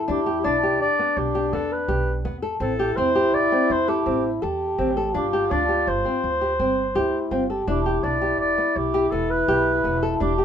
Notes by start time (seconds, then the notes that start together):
Already playing: E4
0.08 E2 D4 G4
0.26 G4
0.44 B1 D4 D5
0.63 G4
0.80 E2 D4 D5
0.99 B3
1.17 B1 G4
1.35 G4
1.53 E2 B3 A4
1.72 B4
1.88 B1 G4
2.25 E2 B3
2.42 A4
2.60 A1 C4 E4 A4
2.79 G4
2.96 E2 C4 C5
3.15 G4
3.33 A1 D5
3.52 C4
3.70 E2 C5
3.88 G4 A4
4.06 A1 C4
4.42 E2 G4 A4
4.78 A1 C4
4.97 A4
5.14 G1 D4 F4 G4
5.33 G4
5.51 D2 D4 D5
5.69 G4
5.87 G1 C5
6.05 C4
6.24 D2
6.41 G4
6.59 G1 C4
6.95 D2 E4 G4
7.31 G1 C4 F4
7.50 G4 A4
7.67 E1 D4 E4 G4
7.86 G4
8.03 B1 D4 D5
8.22 G4
8.40 E1 D5
8.58 B3
8.76 B1 G4
8.94 G4
9.11 E1 B3 A4
9.30 B4
9.48 B1 G4
9.84 E1 B3
10.03 A4
10.20 E1 D4 G4
10.38 G4